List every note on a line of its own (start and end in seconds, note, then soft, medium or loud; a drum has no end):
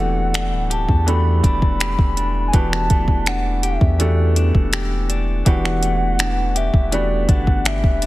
0.00 0.54 E1 loud
0.00 0.82 E3 medium
0.00 2.53 E3 medium
0.00 1.07 A3 medium
0.00 0.82 B3 medium
0.00 0.83 D4 medium
0.00 0.83 F#4 medium
0.00 0.69 G4 medium
0.00 0.83 G4 medium
0.00 0.86 A4 medium
0.00 0.67 F#5 loud
0.34 1.42 D4 medium
0.34 finger snap loud
0.34 closed hi-hat medium
0.52 0.87 D1 loud
0.70 1.79 G4 medium
0.70 1.05 A5 loud
0.70 closed hi-hat medium
0.89 1.41 E2 loud
0.89 kick loud
1.06 2.29 E3 medium
1.06 2.90 A3 medium
1.06 2.29 B3 medium
1.06 2.29 D4 medium
1.06 2.29 F#4 medium
1.06 2.29 G4 medium
1.06 2.30 A4 medium
1.06 1.42 B5 loud
1.06 closed hi-hat medium
1.43 1.96 E1 loud
1.43 2.16 D4 medium
1.43 2.43 B5 loud
1.43 kick medium
1.43 closed hi-hat medium
1.62 kick medium
1.80 2.53 G4 medium
1.80 finger snap loud
1.80 closed hi-hat medium
1.99 2.51 E1 loud
1.99 kick medium
2.17 3.25 D4 medium
2.17 closed hi-hat medium
2.48 2.56 G#5 medium
2.53 2.89 E1 loud
2.53 3.75 E3 medium
2.53 5.46 E3 medium
2.53 3.75 B3 medium
2.53 3.75 D4 medium
2.53 3.76 F#4 medium
2.53 3.62 G4 medium
2.53 3.76 G4 medium
2.53 3.76 B4 medium
2.53 3.30 A5 loud
2.53 kick loud
2.53 closed hi-hat medium
2.73 finger snap medium
2.90 3.78 E1 loud
2.90 3.99 A3 medium
2.90 kick loud
2.90 closed hi-hat medium
3.08 kick medium
3.26 4.35 D4 medium
3.26 3.66 F#5 medium
3.26 finger snap loud
3.26 closed hi-hat medium
3.63 4.72 G4 medium
3.63 4.37 E5 medium
3.63 closed hi-hat medium
3.81 4.52 E2 medium
3.81 kick medium
3.99 5.21 E3 medium
3.99 5.82 A3 medium
3.99 5.22 B3 medium
3.99 5.22 D4 medium
3.99 5.22 F#4 medium
3.99 5.22 G4 medium
3.99 5.22 A4 medium
3.99 closed hi-hat medium
4.36 5.08 D4 medium
4.36 closed hi-hat medium
4.55 5.43 E1 loud
4.55 kick medium
4.73 5.45 G4 medium
4.73 finger snap loud
4.73 closed hi-hat medium
5.09 6.18 D4 medium
5.09 closed hi-hat medium
5.45 6.70 E1 loud
5.45 6.68 E3 medium
5.45 8.06 E3 medium
5.45 6.68 B3 medium
5.45 6.68 D4 medium
5.45 6.68 F#4 medium
5.45 6.54 G4 medium
5.45 6.68 G4 medium
5.45 6.69 B4 medium
5.45 6.59 F#5 loud
5.45 kick loud
5.45 closed hi-hat medium
5.65 finger snap medium
5.82 6.92 A3 medium
5.82 closed hi-hat medium
6.19 7.28 D4 medium
6.19 finger snap loud
6.19 closed hi-hat medium
6.56 7.64 G4 medium
6.56 6.95 E5 loud
6.56 closed hi-hat medium
6.74 7.27 E1 loud
6.74 kick loud
6.91 8.06 E3 medium
6.91 8.06 A3 medium
6.91 8.06 B3 medium
6.91 8.06 D4 medium
6.91 8.06 F#4 medium
6.91 8.06 G4 medium
6.91 8.06 B4 medium
6.91 7.32 D5 medium
6.91 closed hi-hat medium
7.29 7.47 G1 loud
7.29 8.01 D4 medium
7.29 7.69 F#5 loud
7.29 kick loud
7.29 closed hi-hat medium
7.47 7.83 G1 loud
7.47 kick medium
7.65 8.06 G4 medium
7.65 8.06 E5 loud
7.65 finger snap loud
7.65 closed hi-hat medium
7.84 8.06 E1 loud
7.84 kick medium
8.02 8.06 D4 medium
8.02 closed hi-hat medium